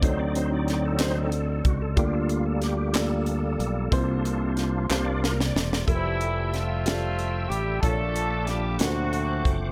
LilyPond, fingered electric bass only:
\new Staff \with { instrumentName = "Fingered electric bass" } { \clef bass \time 6/8 \key f \major \tempo 4. = 62 d,2~ d,8 des,8 | d,2~ d,8 b,,8 | c,4. c,4 e,,8 | f,,2~ f,,8 a,,8 |
bes,,4. d,4 fis,,8 | }